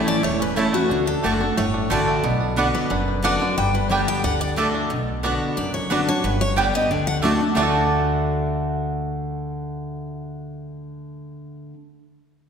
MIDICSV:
0, 0, Header, 1, 6, 480
1, 0, Start_track
1, 0, Key_signature, 2, "major"
1, 0, Tempo, 333333
1, 1308, Time_signature, 4, 2, 24, 8
1, 17994, End_track
2, 0, Start_track
2, 0, Title_t, "Steel-string acoustic guitar"
2, 0, Program_c, 0, 25
2, 112, Note_on_c, 0, 74, 97
2, 342, Note_off_c, 0, 74, 0
2, 348, Note_on_c, 0, 73, 92
2, 582, Note_off_c, 0, 73, 0
2, 604, Note_on_c, 0, 71, 83
2, 820, Note_off_c, 0, 71, 0
2, 820, Note_on_c, 0, 69, 73
2, 1058, Note_off_c, 0, 69, 0
2, 1067, Note_on_c, 0, 66, 83
2, 1515, Note_off_c, 0, 66, 0
2, 1545, Note_on_c, 0, 69, 88
2, 2215, Note_off_c, 0, 69, 0
2, 2267, Note_on_c, 0, 73, 80
2, 2714, Note_off_c, 0, 73, 0
2, 2756, Note_on_c, 0, 74, 83
2, 3423, Note_off_c, 0, 74, 0
2, 3954, Note_on_c, 0, 71, 80
2, 4619, Note_off_c, 0, 71, 0
2, 4674, Note_on_c, 0, 74, 90
2, 5116, Note_off_c, 0, 74, 0
2, 5150, Note_on_c, 0, 79, 91
2, 5382, Note_off_c, 0, 79, 0
2, 5394, Note_on_c, 0, 71, 69
2, 5637, Note_off_c, 0, 71, 0
2, 5637, Note_on_c, 0, 74, 74
2, 5865, Note_off_c, 0, 74, 0
2, 5877, Note_on_c, 0, 79, 113
2, 6100, Note_off_c, 0, 79, 0
2, 6106, Note_on_c, 0, 78, 88
2, 6339, Note_off_c, 0, 78, 0
2, 6348, Note_on_c, 0, 74, 98
2, 6490, Note_off_c, 0, 74, 0
2, 8021, Note_on_c, 0, 74, 81
2, 8255, Note_off_c, 0, 74, 0
2, 8263, Note_on_c, 0, 73, 89
2, 8494, Note_off_c, 0, 73, 0
2, 8502, Note_on_c, 0, 69, 61
2, 8735, Note_off_c, 0, 69, 0
2, 8763, Note_on_c, 0, 73, 102
2, 8984, Note_off_c, 0, 73, 0
2, 8984, Note_on_c, 0, 71, 72
2, 9216, Note_off_c, 0, 71, 0
2, 9231, Note_on_c, 0, 73, 100
2, 9458, Note_off_c, 0, 73, 0
2, 9471, Note_on_c, 0, 74, 68
2, 9700, Note_off_c, 0, 74, 0
2, 9721, Note_on_c, 0, 75, 91
2, 9953, Note_off_c, 0, 75, 0
2, 9953, Note_on_c, 0, 74, 84
2, 10175, Note_off_c, 0, 74, 0
2, 10181, Note_on_c, 0, 78, 98
2, 10324, Note_off_c, 0, 78, 0
2, 10901, Note_on_c, 0, 78, 83
2, 16844, Note_off_c, 0, 78, 0
2, 17994, End_track
3, 0, Start_track
3, 0, Title_t, "Mandolin"
3, 0, Program_c, 1, 25
3, 813, Note_on_c, 1, 57, 87
3, 820, Note_on_c, 1, 73, 92
3, 821, Note_on_c, 1, 64, 94
3, 827, Note_on_c, 1, 81, 97
3, 951, Note_off_c, 1, 57, 0
3, 954, Note_off_c, 1, 73, 0
3, 955, Note_off_c, 1, 64, 0
3, 958, Note_off_c, 1, 81, 0
3, 1778, Note_on_c, 1, 57, 89
3, 1787, Note_on_c, 1, 66, 95
3, 1792, Note_on_c, 1, 74, 99
3, 1795, Note_on_c, 1, 81, 101
3, 1913, Note_off_c, 1, 57, 0
3, 1918, Note_off_c, 1, 66, 0
3, 1920, Note_off_c, 1, 74, 0
3, 1922, Note_off_c, 1, 81, 0
3, 2735, Note_on_c, 1, 57, 94
3, 2742, Note_on_c, 1, 66, 88
3, 2746, Note_on_c, 1, 74, 85
3, 2753, Note_on_c, 1, 81, 103
3, 2872, Note_off_c, 1, 57, 0
3, 2875, Note_off_c, 1, 66, 0
3, 2877, Note_off_c, 1, 74, 0
3, 2881, Note_off_c, 1, 81, 0
3, 3702, Note_on_c, 1, 59, 95
3, 3711, Note_on_c, 1, 66, 84
3, 3713, Note_on_c, 1, 74, 90
3, 3718, Note_on_c, 1, 78, 95
3, 3835, Note_off_c, 1, 59, 0
3, 3840, Note_off_c, 1, 66, 0
3, 3840, Note_off_c, 1, 74, 0
3, 3843, Note_off_c, 1, 78, 0
3, 4663, Note_on_c, 1, 59, 93
3, 4666, Note_on_c, 1, 66, 87
3, 4668, Note_on_c, 1, 74, 94
3, 4673, Note_on_c, 1, 78, 97
3, 4795, Note_off_c, 1, 59, 0
3, 4796, Note_off_c, 1, 66, 0
3, 4798, Note_off_c, 1, 74, 0
3, 4800, Note_off_c, 1, 78, 0
3, 5629, Note_on_c, 1, 59, 92
3, 5636, Note_on_c, 1, 67, 91
3, 5636, Note_on_c, 1, 74, 92
3, 5642, Note_on_c, 1, 79, 95
3, 5757, Note_off_c, 1, 59, 0
3, 5761, Note_off_c, 1, 67, 0
3, 5761, Note_off_c, 1, 74, 0
3, 5764, Note_off_c, 1, 79, 0
3, 6585, Note_on_c, 1, 57, 91
3, 6591, Note_on_c, 1, 66, 88
3, 6593, Note_on_c, 1, 74, 98
3, 6594, Note_on_c, 1, 81, 101
3, 6715, Note_off_c, 1, 57, 0
3, 6718, Note_off_c, 1, 66, 0
3, 6719, Note_off_c, 1, 74, 0
3, 6719, Note_off_c, 1, 81, 0
3, 7536, Note_on_c, 1, 59, 89
3, 7541, Note_on_c, 1, 66, 100
3, 7547, Note_on_c, 1, 74, 88
3, 7552, Note_on_c, 1, 78, 99
3, 7669, Note_off_c, 1, 59, 0
3, 7672, Note_off_c, 1, 66, 0
3, 7675, Note_off_c, 1, 74, 0
3, 7677, Note_off_c, 1, 78, 0
3, 8495, Note_on_c, 1, 59, 91
3, 8500, Note_on_c, 1, 66, 91
3, 8506, Note_on_c, 1, 74, 89
3, 8514, Note_on_c, 1, 78, 91
3, 8628, Note_off_c, 1, 59, 0
3, 8631, Note_off_c, 1, 66, 0
3, 8634, Note_off_c, 1, 74, 0
3, 8638, Note_off_c, 1, 78, 0
3, 9450, Note_on_c, 1, 59, 79
3, 9454, Note_on_c, 1, 67, 95
3, 9458, Note_on_c, 1, 74, 90
3, 9462, Note_on_c, 1, 79, 100
3, 9585, Note_off_c, 1, 59, 0
3, 9587, Note_off_c, 1, 67, 0
3, 9589, Note_off_c, 1, 74, 0
3, 9591, Note_off_c, 1, 79, 0
3, 10394, Note_on_c, 1, 57, 87
3, 10401, Note_on_c, 1, 66, 91
3, 10406, Note_on_c, 1, 74, 91
3, 10410, Note_on_c, 1, 81, 84
3, 10537, Note_off_c, 1, 57, 0
3, 10540, Note_off_c, 1, 66, 0
3, 10543, Note_off_c, 1, 74, 0
3, 10545, Note_off_c, 1, 81, 0
3, 10869, Note_on_c, 1, 57, 94
3, 10889, Note_on_c, 1, 66, 93
3, 10902, Note_on_c, 1, 74, 86
3, 10909, Note_on_c, 1, 81, 98
3, 16885, Note_off_c, 1, 57, 0
3, 16896, Note_off_c, 1, 66, 0
3, 16902, Note_off_c, 1, 74, 0
3, 16906, Note_off_c, 1, 81, 0
3, 17994, End_track
4, 0, Start_track
4, 0, Title_t, "Five-string banjo"
4, 0, Program_c, 2, 105
4, 0, Note_on_c, 2, 64, 60
4, 0, Note_on_c, 2, 67, 58
4, 105, Note_on_c, 2, 61, 58
4, 299, Note_off_c, 2, 67, 0
4, 334, Note_on_c, 2, 57, 68
4, 535, Note_off_c, 2, 64, 0
4, 559, Note_off_c, 2, 61, 0
4, 576, Note_on_c, 2, 61, 55
4, 805, Note_on_c, 2, 52, 56
4, 1014, Note_off_c, 2, 57, 0
4, 1056, Note_on_c, 2, 57, 60
4, 1254, Note_off_c, 2, 61, 0
4, 1288, Note_on_c, 2, 62, 68
4, 1296, Note_off_c, 2, 52, 0
4, 1301, Note_off_c, 2, 57, 0
4, 1519, Note_off_c, 2, 62, 0
4, 1525, Note_on_c, 2, 62, 56
4, 1761, Note_off_c, 2, 62, 0
4, 1767, Note_on_c, 2, 62, 61
4, 2029, Note_off_c, 2, 62, 0
4, 2029, Note_on_c, 2, 62, 63
4, 2266, Note_on_c, 2, 57, 72
4, 2501, Note_off_c, 2, 62, 0
4, 2506, Note_on_c, 2, 62, 61
4, 2743, Note_on_c, 2, 50, 57
4, 2940, Note_off_c, 2, 57, 0
4, 2992, Note_on_c, 2, 57, 63
4, 3223, Note_off_c, 2, 62, 0
4, 3225, Note_off_c, 2, 50, 0
4, 3228, Note_on_c, 2, 59, 63
4, 3229, Note_off_c, 2, 57, 0
4, 3464, Note_on_c, 2, 62, 59
4, 3696, Note_off_c, 2, 59, 0
4, 3713, Note_on_c, 2, 59, 59
4, 3955, Note_off_c, 2, 62, 0
4, 3961, Note_on_c, 2, 62, 65
4, 4185, Note_off_c, 2, 62, 0
4, 4190, Note_on_c, 2, 62, 71
4, 4383, Note_off_c, 2, 59, 0
4, 4428, Note_off_c, 2, 62, 0
4, 4434, Note_on_c, 2, 62, 57
4, 4662, Note_off_c, 2, 62, 0
4, 4668, Note_on_c, 2, 62, 58
4, 4918, Note_on_c, 2, 50, 60
4, 5150, Note_on_c, 2, 55, 78
4, 5151, Note_off_c, 2, 50, 0
4, 5382, Note_off_c, 2, 62, 0
4, 5388, Note_on_c, 2, 62, 59
4, 5620, Note_off_c, 2, 55, 0
4, 5638, Note_on_c, 2, 55, 61
4, 5870, Note_on_c, 2, 59, 63
4, 6058, Note_off_c, 2, 62, 0
4, 6106, Note_off_c, 2, 59, 0
4, 6109, Note_on_c, 2, 62, 68
4, 6111, Note_off_c, 2, 55, 0
4, 6336, Note_off_c, 2, 62, 0
4, 6354, Note_on_c, 2, 62, 57
4, 6575, Note_off_c, 2, 62, 0
4, 6592, Note_on_c, 2, 62, 56
4, 6815, Note_off_c, 2, 62, 0
4, 6832, Note_on_c, 2, 62, 58
4, 7067, Note_off_c, 2, 62, 0
4, 7554, Note_on_c, 2, 59, 65
4, 7562, Note_on_c, 2, 62, 64
4, 7583, Note_off_c, 2, 59, 0
4, 7658, Note_off_c, 2, 62, 0
4, 8514, Note_on_c, 2, 59, 67
4, 8522, Note_on_c, 2, 62, 63
4, 8542, Note_off_c, 2, 59, 0
4, 8618, Note_off_c, 2, 62, 0
4, 9473, Note_on_c, 2, 55, 63
4, 9483, Note_on_c, 2, 62, 64
4, 9485, Note_on_c, 2, 59, 62
4, 9574, Note_off_c, 2, 55, 0
4, 9576, Note_off_c, 2, 59, 0
4, 9578, Note_off_c, 2, 62, 0
4, 10428, Note_on_c, 2, 57, 61
4, 10434, Note_on_c, 2, 62, 62
4, 10463, Note_off_c, 2, 62, 0
4, 10530, Note_off_c, 2, 57, 0
4, 10896, Note_on_c, 2, 57, 85
4, 10925, Note_on_c, 2, 62, 88
4, 10954, Note_on_c, 2, 66, 77
4, 10978, Note_off_c, 2, 62, 0
4, 10983, Note_on_c, 2, 69, 81
4, 16842, Note_off_c, 2, 57, 0
4, 16870, Note_off_c, 2, 66, 0
4, 16885, Note_off_c, 2, 69, 0
4, 17994, End_track
5, 0, Start_track
5, 0, Title_t, "Steel-string acoustic guitar"
5, 0, Program_c, 3, 25
5, 0, Note_on_c, 3, 45, 91
5, 0, Note_on_c, 3, 52, 82
5, 0, Note_on_c, 3, 57, 78
5, 0, Note_on_c, 3, 61, 89
5, 0, Note_on_c, 3, 64, 95
5, 289, Note_off_c, 3, 45, 0
5, 308, Note_off_c, 3, 52, 0
5, 318, Note_off_c, 3, 57, 0
5, 322, Note_off_c, 3, 61, 0
5, 326, Note_off_c, 3, 64, 0
5, 334, Note_on_c, 3, 40, 87
5, 810, Note_on_c, 3, 52, 94
5, 820, Note_on_c, 3, 57, 93
5, 832, Note_on_c, 3, 61, 96
5, 842, Note_on_c, 3, 64, 93
5, 1045, Note_off_c, 3, 64, 0
5, 1051, Note_off_c, 3, 52, 0
5, 1056, Note_off_c, 3, 57, 0
5, 1062, Note_off_c, 3, 61, 0
5, 1063, Note_on_c, 3, 64, 55
5, 1098, Note_on_c, 3, 61, 47
5, 1253, Note_off_c, 3, 40, 0
5, 1295, Note_off_c, 3, 64, 0
5, 1313, Note_off_c, 3, 61, 0
5, 1314, Note_on_c, 3, 50, 89
5, 1769, Note_off_c, 3, 50, 0
5, 1787, Note_on_c, 3, 50, 86
5, 1792, Note_on_c, 3, 57, 80
5, 1805, Note_on_c, 3, 62, 96
5, 1815, Note_on_c, 3, 66, 99
5, 2004, Note_off_c, 3, 66, 0
5, 2019, Note_off_c, 3, 50, 0
5, 2021, Note_on_c, 3, 66, 60
5, 2022, Note_off_c, 3, 57, 0
5, 2028, Note_off_c, 3, 62, 0
5, 2061, Note_on_c, 3, 62, 52
5, 2254, Note_off_c, 3, 66, 0
5, 2274, Note_off_c, 3, 62, 0
5, 2275, Note_on_c, 3, 45, 96
5, 2737, Note_on_c, 3, 50, 97
5, 2755, Note_on_c, 3, 57, 86
5, 2759, Note_on_c, 3, 62, 92
5, 2768, Note_on_c, 3, 66, 104
5, 3184, Note_off_c, 3, 45, 0
5, 3198, Note_off_c, 3, 50, 0
5, 3207, Note_off_c, 3, 57, 0
5, 3209, Note_off_c, 3, 62, 0
5, 3214, Note_off_c, 3, 66, 0
5, 3219, Note_on_c, 3, 47, 92
5, 3691, Note_on_c, 3, 50, 84
5, 3701, Note_on_c, 3, 59, 89
5, 3714, Note_on_c, 3, 62, 86
5, 3725, Note_on_c, 3, 66, 99
5, 4135, Note_off_c, 3, 47, 0
5, 4155, Note_off_c, 3, 50, 0
5, 4160, Note_off_c, 3, 59, 0
5, 4166, Note_off_c, 3, 62, 0
5, 4172, Note_off_c, 3, 66, 0
5, 4176, Note_on_c, 3, 42, 96
5, 4644, Note_on_c, 3, 50, 92
5, 4661, Note_on_c, 3, 59, 95
5, 4666, Note_on_c, 3, 62, 100
5, 4679, Note_on_c, 3, 66, 92
5, 4875, Note_off_c, 3, 66, 0
5, 4887, Note_off_c, 3, 50, 0
5, 4892, Note_on_c, 3, 66, 61
5, 4895, Note_off_c, 3, 59, 0
5, 4898, Note_off_c, 3, 62, 0
5, 4925, Note_on_c, 3, 62, 53
5, 5093, Note_off_c, 3, 42, 0
5, 5129, Note_off_c, 3, 66, 0
5, 5145, Note_off_c, 3, 62, 0
5, 5150, Note_on_c, 3, 43, 85
5, 5609, Note_on_c, 3, 50, 82
5, 5621, Note_on_c, 3, 55, 83
5, 5631, Note_on_c, 3, 59, 80
5, 5641, Note_on_c, 3, 67, 85
5, 6059, Note_off_c, 3, 43, 0
5, 6073, Note_off_c, 3, 50, 0
5, 6079, Note_off_c, 3, 55, 0
5, 6084, Note_off_c, 3, 59, 0
5, 6089, Note_off_c, 3, 67, 0
5, 6105, Note_on_c, 3, 50, 94
5, 6555, Note_off_c, 3, 50, 0
5, 6572, Note_on_c, 3, 50, 86
5, 6586, Note_on_c, 3, 57, 91
5, 6594, Note_on_c, 3, 62, 103
5, 6606, Note_on_c, 3, 66, 89
5, 7033, Note_off_c, 3, 50, 0
5, 7040, Note_off_c, 3, 57, 0
5, 7044, Note_off_c, 3, 62, 0
5, 7050, Note_off_c, 3, 66, 0
5, 7056, Note_on_c, 3, 47, 82
5, 7533, Note_on_c, 3, 50, 84
5, 7551, Note_on_c, 3, 59, 78
5, 7559, Note_on_c, 3, 62, 83
5, 7571, Note_on_c, 3, 66, 89
5, 7970, Note_off_c, 3, 47, 0
5, 7993, Note_off_c, 3, 50, 0
5, 8002, Note_off_c, 3, 59, 0
5, 8006, Note_off_c, 3, 62, 0
5, 8012, Note_off_c, 3, 66, 0
5, 8026, Note_on_c, 3, 42, 95
5, 8496, Note_on_c, 3, 50, 90
5, 8508, Note_on_c, 3, 59, 98
5, 8520, Note_on_c, 3, 62, 94
5, 8526, Note_on_c, 3, 66, 98
5, 8718, Note_off_c, 3, 66, 0
5, 8730, Note_off_c, 3, 50, 0
5, 8736, Note_off_c, 3, 59, 0
5, 8736, Note_on_c, 3, 66, 61
5, 8742, Note_off_c, 3, 62, 0
5, 8772, Note_on_c, 3, 62, 49
5, 8935, Note_off_c, 3, 42, 0
5, 8968, Note_off_c, 3, 66, 0
5, 8986, Note_off_c, 3, 62, 0
5, 8995, Note_on_c, 3, 43, 90
5, 9451, Note_on_c, 3, 50, 82
5, 9469, Note_on_c, 3, 55, 84
5, 9483, Note_on_c, 3, 59, 86
5, 9490, Note_on_c, 3, 67, 87
5, 9682, Note_off_c, 3, 67, 0
5, 9687, Note_off_c, 3, 50, 0
5, 9696, Note_off_c, 3, 55, 0
5, 9700, Note_on_c, 3, 67, 59
5, 9703, Note_off_c, 3, 59, 0
5, 9734, Note_on_c, 3, 59, 52
5, 9899, Note_off_c, 3, 43, 0
5, 9929, Note_off_c, 3, 67, 0
5, 9947, Note_off_c, 3, 59, 0
5, 9947, Note_on_c, 3, 50, 88
5, 10387, Note_off_c, 3, 50, 0
5, 10405, Note_on_c, 3, 50, 95
5, 10420, Note_on_c, 3, 57, 98
5, 10435, Note_on_c, 3, 62, 101
5, 10442, Note_on_c, 3, 66, 100
5, 10644, Note_off_c, 3, 50, 0
5, 10644, Note_off_c, 3, 66, 0
5, 10651, Note_off_c, 3, 57, 0
5, 10659, Note_off_c, 3, 62, 0
5, 10661, Note_on_c, 3, 66, 54
5, 10692, Note_on_c, 3, 62, 47
5, 10875, Note_on_c, 3, 50, 84
5, 10890, Note_off_c, 3, 66, 0
5, 10895, Note_on_c, 3, 57, 78
5, 10898, Note_off_c, 3, 62, 0
5, 10915, Note_on_c, 3, 62, 85
5, 10933, Note_on_c, 3, 66, 88
5, 16889, Note_off_c, 3, 50, 0
5, 16899, Note_off_c, 3, 57, 0
5, 16909, Note_off_c, 3, 62, 0
5, 16918, Note_off_c, 3, 66, 0
5, 17994, End_track
6, 0, Start_track
6, 0, Title_t, "Upright bass"
6, 0, Program_c, 4, 32
6, 343, Note_on_c, 4, 28, 82
6, 997, Note_off_c, 4, 28, 0
6, 1306, Note_on_c, 4, 38, 94
6, 1633, Note_off_c, 4, 38, 0
6, 1786, Note_on_c, 4, 30, 76
6, 2195, Note_off_c, 4, 30, 0
6, 2268, Note_on_c, 4, 31, 89
6, 2676, Note_off_c, 4, 31, 0
6, 2748, Note_on_c, 4, 33, 85
6, 3156, Note_off_c, 4, 33, 0
6, 3225, Note_on_c, 4, 35, 95
6, 3878, Note_off_c, 4, 35, 0
6, 4182, Note_on_c, 4, 30, 86
6, 4836, Note_off_c, 4, 30, 0
6, 5148, Note_on_c, 4, 31, 93
6, 5799, Note_off_c, 4, 31, 0
6, 6108, Note_on_c, 4, 38, 92
6, 6759, Note_off_c, 4, 38, 0
6, 7076, Note_on_c, 4, 35, 89
6, 7723, Note_off_c, 4, 35, 0
6, 8032, Note_on_c, 4, 30, 81
6, 8681, Note_off_c, 4, 30, 0
6, 8982, Note_on_c, 4, 31, 87
6, 9634, Note_off_c, 4, 31, 0
6, 9940, Note_on_c, 4, 38, 91
6, 10593, Note_off_c, 4, 38, 0
6, 10898, Note_on_c, 4, 38, 89
6, 16842, Note_off_c, 4, 38, 0
6, 17994, End_track
0, 0, End_of_file